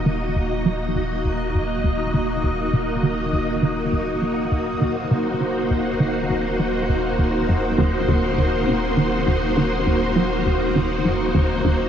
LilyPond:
<<
  \new Staff \with { instrumentName = "String machine" } { \time 4/4 \key ees \dorian \tempo 4 = 101 << { ees''1~ | ees''1 | c''1~ | c''1~ |
c''1 | } \\ { <bes ees' ges'>1~ | <bes ees' ges'>1~ | <bes ees' ges'>1~ | <bes ees' ges'>1~ |
<bes ees' ges'>1 | } >> }
  \new Staff \with { instrumentName = "Synth arpeggio sound" } { \clef bass \time 4/4 \key ees \dorian ees8 ees,16 r16 ges16 r16 ees,16 r16 ees,8 ges,16 r16 ees,16 r16 ees,8 | ees,16 r16 des8 ees16 r16 ees,8 ees8 ees,16 r16 ges16 r16 ees,16 r16 | ees,16 r16 des8 ees16 r16 ees,8 ees8 ees,16 r16 ges16 r16 ees,16 r16 | ees,8 ges,16 r16 ees,16 r16 ees,8 ees,16 r16 des8 ees16 r16 ees,8 |
ees8 ees,16 r16 ges16 r16 ees,16 r16 ees,8 ges,16 r16 ees,16 r16 ees,8 | }
  \new Staff \with { instrumentName = "Sub bass" } { \clef bass \time 4/4 \key ees \dorian ees,,1~ | ees,,1 | ees,,1~ | ees,,1~ |
ees,,1 | }
>>